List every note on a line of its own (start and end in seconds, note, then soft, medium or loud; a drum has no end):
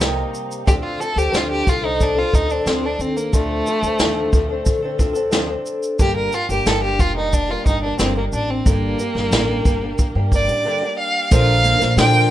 0.00 0.22 C2 medium
0.00 0.65 C3 medium
0.00 0.65 G3 medium
0.00 0.66 A#3 medium
0.00 0.33 D#4 medium
0.00 0.67 D#4 medium
0.00 0.67 G4 medium
0.00 snare loud
0.00 shaker medium
0.35 shaker soft
0.51 shaker soft
0.65 0.95 D2 medium
0.65 1.00 D3 medium
0.65 0.98 F3 medium
0.65 0.99 C4 medium
0.65 1.00 D4 medium
0.65 0.75 G4 medium
0.65 1.01 A4 medium
0.65 kick medium
0.65 shaker medium
0.84 1.02 F4 medium
0.99 1.16 F3 medium
0.99 1.17 C4 medium
0.99 1.16 D4 medium
0.99 1.20 A4 medium
0.99 1.14 A4 medium
0.99 shaker soft
1.15 1.30 D2 medium
1.15 1.31 C4 soft
1.15 1.32 D4 soft
1.15 1.38 G4 medium
1.15 1.32 A4 soft
1.15 shaker soft
1.31 1.61 D2 medium
1.31 1.66 D3 medium
1.31 1.64 F3 medium
1.31 1.65 C4 medium
1.31 1.66 D4 medium
1.31 1.67 A4 medium
1.31 snare medium
1.31 shaker medium
1.36 1.51 F4 medium
1.52 1.71 G4 medium
1.65 2.21 C2 medium
1.65 1.83 F3 soft
1.65 1.83 C4 soft
1.65 1.82 D4 medium
1.65 1.87 F4 medium
1.65 1.80 A4 medium
1.65 kick medium
1.65 shaker soft
1.81 2.17 C4 soft
1.81 2.15 D4 soft
1.81 2.14 A4 soft
1.86 2.04 D#4 medium
2.01 2.20 D4 medium
2.01 kick medium
2.01 shaker medium
2.15 2.32 C4 soft
2.15 2.33 D4 soft
2.15 2.37 F4 medium
2.15 2.33 A4 medium
2.32 2.61 D2 medium
2.32 2.49 F3 medium
2.32 2.50 C4 medium
2.32 2.49 D4 medium
2.32 2.53 D#4 medium
2.32 2.47 A4 soft
2.32 kick medium
2.32 shaker medium
2.48 2.65 C4 soft
2.48 2.66 D4 soft
2.48 2.69 D4 medium
2.48 2.66 A4 medium
2.48 shaker soft
2.65 2.94 D2 medium
2.65 2.83 D3 medium
2.65 2.83 F3 medium
2.65 2.83 C4 medium
2.65 2.87 C4 medium
2.65 2.83 D4 medium
2.65 2.82 A4 medium
2.65 snare medium
2.65 shaker medium
2.83 3.33 C4 soft
2.83 3.32 D4 soft
2.83 3.03 D4 medium
2.83 3.33 A4 soft
2.99 3.27 D#2 medium
2.99 3.18 C4 medium
2.99 shaker soft
3.17 3.35 A#3 medium
3.17 shaker soft
3.33 3.60 D2 medium
3.33 3.66 D3 medium
3.33 3.65 F3 medium
3.33 4.67 A3 medium
3.33 3.66 C4 medium
3.33 3.67 D4 medium
3.33 3.67 A4 medium
3.33 kick medium
3.33 shaker medium
3.66 3.83 F3 medium
3.66 3.84 C4 medium
3.66 3.83 D4 medium
3.66 3.82 A4 medium
3.66 shaker soft
3.83 3.97 D2 medium
3.83 4.00 C4 soft
3.83 4.00 D4 soft
3.83 4.00 A4 medium
3.83 shaker soft
3.99 4.27 D#2 medium
3.99 4.33 D3 medium
3.99 4.31 F3 medium
3.99 4.32 C4 medium
3.99 4.33 D4 medium
3.99 4.34 A4 medium
3.99 snare loud
3.99 shaker medium
4.32 4.60 D2 medium
4.32 4.50 F3 medium
4.32 4.50 C4 medium
4.32 4.49 D4 medium
4.32 4.48 A4 medium
4.32 kick medium
4.32 shaker soft
4.49 4.84 C4 soft
4.49 4.83 D4 soft
4.49 4.81 A4 medium
4.66 4.94 D3 medium
4.66 kick medium
4.66 shaker medium
4.82 4.98 C4 soft
4.82 4.99 D4 medium
4.82 5.00 A4 medium
4.98 5.54 D2 medium
4.98 5.16 F3 medium
4.98 5.15 C4 medium
4.98 5.14 D4 medium
4.98 5.12 A4 medium
4.98 kick medium
4.98 shaker soft
5.13 5.31 C4 soft
5.13 5.31 D4 soft
5.13 5.31 A4 medium
5.13 shaker soft
5.31 5.49 D3 medium
5.31 5.49 F3 medium
5.31 5.49 C4 loud
5.31 5.47 D4 medium
5.31 5.45 A4 medium
5.31 snare loud
5.31 shaker medium
5.47 5.99 C4 soft
5.47 5.99 D4 soft
5.47 5.98 A4 soft
5.66 shaker soft
5.83 shaker soft
5.99 6.27 G1 medium
5.99 6.32 G2 medium
5.99 6.33 D3 medium
5.99 6.31 G3 medium
5.99 6.32 A#3 medium
5.99 6.33 D4 medium
5.99 6.33 G4 medium
5.99 6.16 G4 medium
5.99 kick loud
5.99 shaker medium
6.17 6.36 A#4 medium
6.32 6.49 G3 medium
6.32 6.50 A#3 medium
6.32 6.49 D4 medium
6.32 6.50 F4 medium
6.32 6.48 G4 medium
6.32 shaker soft
6.49 6.63 G1 medium
6.49 6.65 G3 soft
6.49 6.66 A#3 soft
6.49 6.66 D4 medium
6.49 6.66 G4 soft
6.49 6.69 G4 medium
6.49 shaker soft
6.65 6.99 G1 medium
6.65 6.99 G2 medium
6.65 6.99 D3 medium
6.65 6.97 G3 medium
6.65 6.98 A#3 medium
6.65 6.99 D4 medium
6.65 7.00 G4 medium
6.65 6.83 A4 medium
6.65 snare loud
6.65 shaker medium
6.83 7.02 G4 medium
6.98 7.54 F1 medium
6.98 7.15 G3 medium
6.98 7.16 A#3 medium
6.98 7.16 D4 medium
6.98 7.16 F4 medium
6.98 7.14 G4 medium
6.98 kick medium
6.98 shaker soft
7.16 7.51 G3 soft
7.16 7.50 A#3 soft
7.16 7.49 D4 soft
7.16 7.35 D#4 medium
7.16 7.48 G4 soft
7.33 7.52 D4 medium
7.33 kick medium
7.33 shaker medium
7.49 7.65 G3 soft
7.49 7.65 A#3 medium
7.49 7.67 D4 medium
7.49 7.66 F4 medium
7.49 7.66 G4 medium
7.66 7.93 G1 medium
7.66 7.82 G3 soft
7.66 7.83 A#3 medium
7.66 7.83 D4 medium
7.66 7.82 D#4 medium
7.66 7.81 G4 medium
7.66 kick medium
7.66 shaker soft
7.83 7.98 G3 soft
7.83 7.99 A#3 soft
7.83 7.99 D4 medium
7.83 7.99 D4 soft
7.83 7.99 G4 soft
7.99 8.27 G1 medium
7.99 8.16 G2 medium
7.99 8.16 D3 medium
7.99 8.16 G3 medium
7.99 8.16 A#3 medium
7.99 8.15 C4 medium
7.99 8.14 D4 medium
7.99 8.14 G4 medium
7.99 snare loud
7.99 shaker medium
8.15 8.64 G3 soft
8.15 8.65 A#3 soft
8.15 8.25 A#3 medium
8.15 8.65 D4 soft
8.15 8.65 G4 soft
8.32 8.60 A1 medium
8.32 8.52 D4 medium
8.32 shaker soft
8.50 8.69 C4 medium
8.65 8.93 G1 medium
8.65 8.99 G2 medium
8.65 8.99 D3 medium
8.65 8.97 G3 medium
8.65 8.99 A#3 medium
8.65 10.32 A#3 medium
8.65 8.99 D4 medium
8.65 9.00 G4 medium
8.65 kick loud
8.65 shaker medium
8.98 9.15 G3 medium
8.98 9.16 A#3 medium
8.98 9.15 D4 medium
8.98 9.14 G4 medium
8.98 shaker soft
9.15 9.29 G1 medium
9.15 9.32 G3 soft
9.15 9.32 A#3 soft
9.15 9.32 D4 soft
9.15 9.32 G4 soft
9.15 snare soft
9.31 9.59 A1 medium
9.31 9.65 G2 medium
9.31 9.65 D3 medium
9.31 9.64 G3 medium
9.31 9.65 A#3 medium
9.31 9.66 D4 medium
9.31 9.66 G4 medium
9.31 snare loud
9.31 shaker medium
9.65 9.93 G1 medium
9.65 9.82 G3 medium
9.65 9.82 A#3 medium
9.65 9.82 D4 medium
9.65 9.81 G4 medium
9.65 kick medium
9.65 shaker soft
9.82 10.17 G3 soft
9.82 10.16 A#3 soft
9.82 10.15 D4 soft
9.82 10.14 G4 soft
9.98 kick medium
9.98 shaker medium
10.15 10.29 G2 medium
10.15 10.32 G3 medium
10.15 10.33 A#3 medium
10.15 10.32 D4 medium
10.15 10.32 G4 medium
10.32 10.46 G1 medium
10.32 10.49 G3 medium
10.32 10.49 A#3 medium
10.32 10.49 D4 medium
10.32 10.48 G4 medium
10.32 10.96 D5 medium
10.32 kick medium
10.32 shaker soft
10.48 10.62 A1 medium
10.48 10.65 G3 soft
10.48 10.65 A#3 soft
10.48 10.65 D4 soft
10.48 10.65 G4 medium
10.48 shaker soft
10.65 10.81 G2 medium
10.65 10.82 D3 medium
10.65 10.82 G3 medium
10.65 10.82 A#3 medium
10.65 10.82 D4 medium
10.65 10.82 G4 loud
10.83 11.32 G3 soft
10.83 11.31 A#3 soft
10.83 11.32 D4 soft
10.83 11.32 G4 soft
10.99 11.30 F5 medium
11.31 11.72 A#1 loud
11.31 11.81 A#2 medium
11.31 11.81 D3 medium
11.31 11.81 F3 medium
11.31 11.81 A#3 medium
11.31 11.80 D4 medium
11.31 12.30 F4 medium
11.31 11.78 A#4 medium
11.31 11.95 F5 loud
11.31 kick loud
11.31 shaker medium
11.64 12.30 A#3 medium
11.64 shaker medium
11.80 11.95 A#1 loud
11.80 11.97 F3 soft
11.80 11.97 A#3 medium
11.80 11.98 D4 medium
11.80 11.97 A#4 medium
11.80 snare soft
11.80 shaker medium
11.97 12.24 A#2 loud
11.97 12.30 A#2 medium
11.97 12.30 D3 medium
11.97 12.30 F3 medium
11.97 12.30 A#3 medium
11.97 12.30 D4 medium
11.97 12.30 A#4 medium
11.97 12.30 G5 loud
11.97 snare loud
11.97 shaker medium